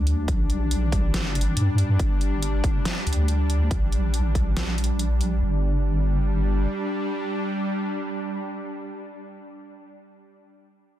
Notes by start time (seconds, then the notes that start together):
Already playing: D2 G3 D4
0.07 closed hi-hat
0.28 A#1, kick, closed hi-hat
0.50 closed hi-hat
0.71 closed hi-hat
0.92 kick, closed hi-hat
1.14 G1, snare, closed hi-hat
1.35 closed hi-hat
1.41 closed hi-hat
1.57 G2, closed hi-hat
1.78 closed hi-hat
1.99 G1, kick, closed hi-hat
2.21 closed hi-hat
2.42 closed hi-hat
2.64 kick, closed hi-hat
2.85 snare, closed hi-hat
3.07 D2, closed hi-hat
3.13 closed hi-hat
3.28 closed hi-hat
3.50 closed hi-hat
3.71 A#1, kick, closed hi-hat
3.92 closed hi-hat
4.14 closed hi-hat
4.35 kick, closed hi-hat
4.57 A#1, snare, closed hi-hat
4.78 closed hi-hat
4.84 closed hi-hat
4.99 closed hi-hat
5.21 closed hi-hat
5.42 G1 G3 D4